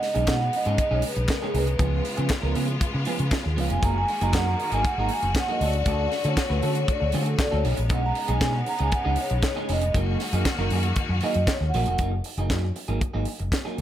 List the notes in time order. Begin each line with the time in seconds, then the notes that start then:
Already playing: C#3 G#3 B3 D#4
0.02 D#5, muted clean electric guitar stroke, snare, open hi-hat
0.15 B1 G#3 C#4 D#4 G#4, closed hi-hat
0.27 B2 G#3 C#4 D#4 G#4 F#5, kick, snare, clap, closed hi-hat
0.41 F#5, muted clean electric guitar stroke
0.53 D#5, muted clean electric guitar stroke, open hi-hat
0.65 G#2 G#3 C#4 D#4 G#4, closed hi-hat
0.78 D#5, muted clean electric guitar stroke, kick, closed hi-hat
0.91 B1 G#3 C#4 D#4 G#4 C#5
1.02 muted clean electric guitar stroke, open hi-hat
1.08 B4
1.16 B1, muted clean electric guitar stroke, closed hi-hat
1.28 muted clean electric guitar stroke, kick, snare, clap, closed hi-hat
1.33 A#4
1.42 G#3 C#4 D#4 G#4
1.54 C2 G#3 C#4 D#4 G#4 B4, open hi-hat
1.67 muted clean electric guitar stroke, closed hi-hat
1.79 C#2 F3 B3 C#4 F4 G#4, kick, closed hi-hat
2.04 muted clean electric guitar stroke, open hi-hat
2.17 C#3 F3 B3 C#4 G#4, closed hi-hat
2.30 muted clean electric guitar stroke, kick, snare, clap, closed hi-hat
2.42 C#2 F3 B3 C#4 A#4
2.55 C#3 F3 B3 C#4 G#4, open hi-hat
2.68 muted clean electric guitar stroke, closed hi-hat
2.80 muted clean electric guitar stroke, kick, closed hi-hat
2.93 C#3, muted clean electric guitar stroke
3.05 F3 B3 C#4 G#4, open hi-hat
3.19 C#3, muted clean electric guitar stroke, closed hi-hat
3.31 muted clean electric guitar stroke, kick, snare, clap, closed hi-hat
3.44 D#2, muted clean electric guitar stroke
3.57 C#2 F3 B3 C#4 G#4 F5, open hi-hat
3.70 F1 F3 B3 C#4 G#4 G#5, closed hi-hat
3.82 F#1 D#3 F#3 A#3 D#4 F#4 G#4 A#5, kick, closed hi-hat
3.96 G#5, muted clean electric guitar stroke
4.08 muted clean electric guitar stroke, open hi-hat
4.21 F#1 F#3 A#3 D#4 G#4 A#5, closed hi-hat
4.33 F#2 F#3 A#3 D#4 G#4 F#5, kick, snare, clap, closed hi-hat
4.47 A#5, muted clean electric guitar stroke
4.60 muted clean electric guitar stroke, open hi-hat
4.72 G#1 F#3 A#3 D#4 G#4 G#5, closed hi-hat
4.85 F#5, muted clean electric guitar stroke, kick, closed hi-hat
4.98 G#1 F#3 A#3 D#4 G#4 A#5
5.09 muted clean electric guitar stroke, open hi-hat
5.13 G#5
5.23 F#1, muted clean electric guitar stroke, closed hi-hat
5.35 muted clean electric guitar stroke, kick, snare, clap, closed hi-hat
5.39 F#5
5.49 F#3 A#3 D#4 G#4 D#5
5.58 D2 C#3 D3 A3 C#4, open hi-hat
5.62 F#4 A4 D5
5.73 muted clean electric guitar stroke, closed hi-hat
5.86 D2 A3 C#4 F#4 A4 D5, kick, closed hi-hat
6.12 muted clean electric guitar stroke, snare, open hi-hat
6.24 D3 A3 C#4 F#4 A4 C#5, closed hi-hat
6.37 muted clean electric guitar stroke, kick, snare, clap, closed hi-hat
6.50 D2 A3 C#4 F#4 B4
6.62 D3 A3 C#4 F#4 A4 C#5, open hi-hat
6.75 muted clean electric guitar stroke, closed hi-hat
6.88 D5, muted clean electric guitar stroke, kick, closed hi-hat
7.00 D2, muted clean electric guitar stroke
7.04 C#5
7.12 D3 A3 C#4 F#4 A4, open hi-hat
7.26 A4, muted clean electric guitar stroke, closed hi-hat
7.39 D5, muted clean electric guitar stroke, kick, snare, clap, closed hi-hat
7.51 D2 A3 C#4 F#4 A4
7.55 C#5
7.64 B1 C#3 G#3 B3 C#4 D#4 G#4, open hi-hat
7.76 A#1, muted clean electric guitar stroke, closed hi-hat
7.89 B1 G#3 C#4 D#4 G#4, kick, closed hi-hat
7.94 F#5
8.02 A#5, muted clean electric guitar stroke
8.15 muted clean electric guitar stroke, open hi-hat
8.28 B1 G#3 C#4 D#4 G#4, closed hi-hat
8.33 G#5
8.41 B2 G#3 C#4 D#4 G#4, kick, snare, clap, closed hi-hat
8.54 F#5, muted clean electric guitar stroke
8.66 A#5, muted clean electric guitar stroke, open hi-hat
8.79 C#2 G#3 C#4 D#4 G#4 G#5, closed hi-hat
8.92 F#5, muted clean electric guitar stroke, kick, closed hi-hat
9.05 C#2 G#3 C#4 D#4 G#4
9.16 muted clean electric guitar stroke, open hi-hat
9.21 C#5
9.30 B1, muted clean electric guitar stroke, closed hi-hat
9.42 muted clean electric guitar stroke, kick, snare, clap, closed hi-hat
9.56 G#3 C#4 D#4 G#4
9.69 F1 G#3 C#4 D#4 G#4 D#5, open hi-hat
9.82 muted clean electric guitar stroke, closed hi-hat
9.94 F#1 D#3 F#3 A#3 D#4 F#4 G#4, kick, closed hi-hat
10.20 muted clean electric guitar stroke, snare, open hi-hat
10.33 F#2 F#3 A#3 D#4 G#4, closed hi-hat
10.45 kick, snare, clap, closed hi-hat
10.58 F#1 F#3 A#3 D#4 A#4
10.70 F#2 F#3 A#3 D#4 G#4, open hi-hat
10.83 muted clean electric guitar stroke, closed hi-hat
10.96 muted clean electric guitar stroke, kick, closed hi-hat
11.09 F#2, muted clean electric guitar stroke
11.21 F#3 A#3 D#4 G#4 D#5, open hi-hat
11.34 F#2, muted clean electric guitar stroke, closed hi-hat
11.47 muted clean electric guitar stroke, kick, snare, clap, closed hi-hat
11.51 C#5
11.61 D#2, muted clean electric guitar stroke
11.69 F#5
11.74 A#1 F#3 A#3 D#4 G#4, open hi-hat
11.86 F1 F#3 A#3 D#4 G#4, closed hi-hat
11.98 F#1 F#3 A#3 D#4 G#4, kick, closed hi-hat
12.12 muted clean electric guitar stroke
12.24 muted clean electric guitar stroke, open hi-hat
12.38 F#1 F#3 A#3 D#4 G#4, closed hi-hat
12.50 F#2 F#3 A#3 D#4 G#4, kick, snare, clap, closed hi-hat
12.63 muted clean electric guitar stroke
12.76 muted clean electric guitar stroke, open hi-hat
12.88 G#1 F#3 A#3 D#4 G#4, closed hi-hat
13.01 muted clean electric guitar stroke, kick, closed hi-hat
13.14 G#1 F#3 A#3 D#4 G#4
13.25 muted clean electric guitar stroke, open hi-hat
13.39 F#1, muted clean electric guitar stroke, closed hi-hat
13.52 muted clean electric guitar stroke, kick, snare, clap, closed hi-hat
13.65 F#3 A#3 D#4 G#4